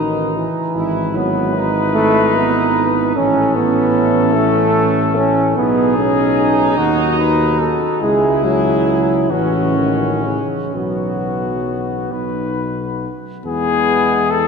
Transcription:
0.00 0.45 A1 soft
0.00 0.37 D#3 medium
0.00 0.72 D#4 medium
0.00 0.45 F#4 medium
0.00 0.49 B4 medium
0.36 1.17 E3 medium
0.75 3.12 G#1 medium
0.75 1.14 E4 medium
0.75 3.13 E4 medium
0.75 3.12 B4 medium
1.15 1.68 F#3 medium
1.15 1.55 B3 medium
1.54 3.16 D#4 medium
1.95 2.38 A3 loud
2.36 3.15 B3 medium
3.16 5.54 A1 medium
3.16 3.58 C#4 loud
3.16 5.41 C#4 medium
3.16 5.54 E4 medium
3.16 5.54 A4 medium
3.56 4.37 B3 medium
4.36 5.18 A3 loud
5.17 5.56 C#4 loud
5.56 6.79 B1 medium
5.56 5.96 B3 loud
5.56 7.98 D#4 medium
5.56 6.76 D#4 medium
5.56 6.79 G#4 medium
5.97 6.80 C#4 loud
6.78 7.85 D#2 medium
6.78 7.19 D#4 loud
6.78 7.18 F#4 medium
6.78 8.03 F#4 medium
7.19 7.61 B4 medium
7.59 8.04 A4 medium
8.01 9.27 C#2 medium
8.01 8.46 G#3 loud
8.01 9.31 E4 medium
8.01 9.27 E4 medium
8.01 9.32 G#4 medium
8.45 9.32 F#3 medium
9.30 10.39 A1 medium
9.30 9.77 E3 medium
9.30 10.41 C#4 medium
9.30 10.74 C#4 medium
9.30 10.41 F#4 medium
9.76 10.26 D#3 medium
10.24 10.75 C#3 medium
10.74 12.07 B1 soft
10.74 12.11 F#3 medium
10.74 12.14 B3 soft
10.74 12.78 B3 medium
10.74 12.14 F#4 soft
12.12 13.09 B1 soft
12.12 13.11 D#4 soft
12.12 13.11 B4 soft
13.44 14.48 E2 medium
13.44 14.48 E3 medium
13.44 14.48 G#3 medium
13.44 14.48 B3 medium
13.44 14.32 G#4 medium
14.31 14.48 A4 medium

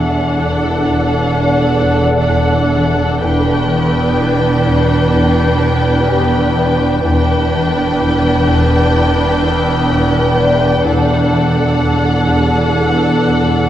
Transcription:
0.00 3.19 E1 medium
0.00 3.18 E2 medium
0.00 3.19 E2 medium
0.00 0.19 E3 soft
0.00 3.20 D4 soft
0.00 3.19 A4 soft
0.00 3.20 A4 soft
0.00 3.20 D5 medium
0.00 0.82 E5 soft
0.00 3.19 F#5 soft
0.00 3.20 F#5 medium
0.39 0.67 E2 soft
0.86 1.14 E2 medium
1.32 1.62 E2 soft
1.32 4.14 D5 soft
1.81 2.09 E2 soft
2.28 2.57 E2 medium
2.76 3.05 E3 soft
3.23 7.00 E1 medium
3.23 7.01 E2 medium
3.23 3.53 E2 medium
3.23 7.01 D4 medium
3.23 7.00 B4 medium
3.23 7.05 B4 medium
3.23 7.01 D5 medium
3.23 7.00 G5 medium
3.23 7.05 G5 medium
3.71 4.00 E3 soft
4.19 4.47 E2 medium
4.67 4.95 E2 medium
5.14 5.43 E2 medium
5.62 5.91 E2 medium
6.09 6.38 E2 medium
6.09 8.91 G4 soft
6.09 8.91 G5 soft
6.57 6.86 E3 medium
7.04 10.81 E1 medium
7.04 10.81 E2 medium
7.04 7.33 E2 medium
7.04 10.82 D4 medium
7.04 10.82 B4 medium
7.04 10.82 D5 soft
7.04 10.82 G5 medium
7.53 7.82 E3 soft
8.00 8.29 E2 medium
8.47 8.76 E2 medium
8.95 9.23 E2 soft
9.43 9.71 E2 medium
9.90 10.19 E2 medium
10.38 10.66 E3 soft
10.38 13.20 D5 soft
10.85 13.69 E1 medium
10.85 13.69 E2 medium
10.85 11.14 E2 medium
10.85 13.69 D4 soft
10.85 13.69 A4 medium
10.85 13.69 D5 medium
10.85 13.69 F#5 medium
11.33 11.62 E3 soft
11.81 12.09 E2 soft
12.28 12.56 E2 medium
12.76 13.04 E2 soft
13.23 13.51 E2 soft

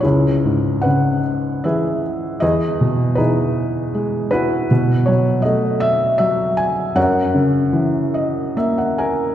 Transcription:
0.00 2.38 C#2 soft
0.00 1.20 E4 soft
0.00 1.20 G#4 soft
0.00 0.85 C#5 medium
0.45 2.00 G#2 soft
0.82 1.64 B4 soft
0.82 1.65 F#5 medium
0.86 2.39 C#3 soft
1.64 2.40 E3 soft
1.64 2.38 G#4 soft
1.64 2.38 B4 soft
1.64 2.44 E5 medium
2.40 4.66 E2 soft
2.40 3.16 G#4 soft
2.40 3.14 B4 soft
2.40 3.19 D#5 medium
2.81 4.29 B2 soft
3.15 4.67 E3 soft
3.15 4.28 D#4 soft
3.15 4.29 G#4 soft
3.15 4.29 B4 medium
3.94 4.68 G#3 soft
4.31 5.40 E4 soft
4.31 5.40 F#4 soft
4.31 5.09 B4 medium
4.71 6.93 B2 medium
5.06 6.18 F#3 soft
5.06 5.45 C#5 medium
5.42 6.93 A3 soft
5.42 5.82 D#5 medium
5.80 6.17 E5 medium
6.18 6.94 F#3 soft
6.18 6.58 E5 medium
6.57 6.97 G#5 medium
6.96 9.35 F#2 medium
6.96 8.54 A#4 soft
6.96 8.54 C#5 medium
6.96 8.53 F#5 medium
7.34 8.95 C#3 soft
7.73 9.34 E3 soft
8.14 8.54 D#5 medium
8.57 9.35 A#3 soft
8.57 8.77 E5 medium
8.78 8.97 F#5 soft
8.98 9.35 A#4 medium
8.98 9.35 G#5 soft

